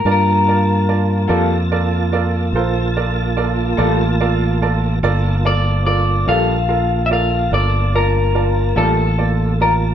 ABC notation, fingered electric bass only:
X:1
M:12/8
L:1/8
Q:3/8=48
K:Gm
V:1 name="Fingered electric bass" clef=bass
G,,3 F,,3 B,,,3 A,,,3 | G,,,3 B,,,3 G,,,3 A,,,3 |]